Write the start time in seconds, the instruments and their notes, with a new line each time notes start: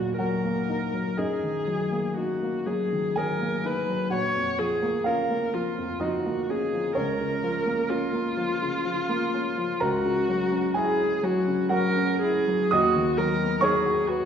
Already playing: grand piano D#2 A#2 F#3 A#3 D#4 G#4 A#4 G#5 A#5, viola F#4
0.18 grand piano F#3 F#4 F#5, viola A#4
0.45 grand piano A#3
0.69 grand piano D#4
0.94 grand piano F#3
1.17 grand piano F#2 D#4 D#5, viola G#4
1.43 grand piano D#3
1.67 grand piano F#3
1.92 grand piano A#3
2.17 grand piano D#4, viola F#4
2.42 grand piano A#3
2.66 grand piano F#3, viola G#4
2.93 grand piano D#3
3.16 grand piano F#3 G#4 G#5, viola A#4
3.41 grand piano A#3
3.65 grand piano D#4, viola B4
3.89 grand piano F#3
4.10 grand piano A#1 F#4 F#5, viola C#5
4.35 grand piano F2
4.58 grand piano F3, viola G#4
4.82 grand piano A#3
5.04 grand piano C#4 F4 F5, viola A#4
5.30 grand piano A#3
5.53 grand piano F3, viola F4
5.78 grand piano F2
6.00 grand piano F3 D#4 D#5, viola F#4
6.26 grand piano A#3
6.49 grand piano C#4, viola G#4
6.73 grand piano F3
6.95 grand piano C#2 C#4 C#5, viola A#4
7.20 grand piano C#3
7.43 grand piano F3
7.66 grand piano A#3
7.89 grand piano C#4, viola F4
8.13 grand piano A#3
8.37 grand piano F3
8.62 grand piano C#3
8.85 grand piano F3
9.09 grand piano A#3
9.34 grand piano C#4
9.57 grand piano F3
9.80 grand piano C#2 A#4 A#5, viola F#4
10.05 grand piano C#3
10.29 grand piano F#3
10.52 grand piano C#4
10.74 grand piano E4 G#4 G#5, viola G#4
10.99 grand piano C#4
11.23 grand piano F#3, viola F#4
11.47 grand piano C#3
11.69 grand piano F#3 F#4 F#5, viola A#4
11.97 grand piano C#4
12.22 grand piano E4, viola G#4
12.48 grand piano F#3
12.71 grand piano D#2 D#5 D#6, viola F#4
12.96 grand piano D#3
13.17 grand piano F#3, viola A#4
13.42 grand piano B3
13.61 grand piano D#4 C#5 C#6, viola G#4
13.86 grand piano F#4
14.07 viola F#4, grand piano B4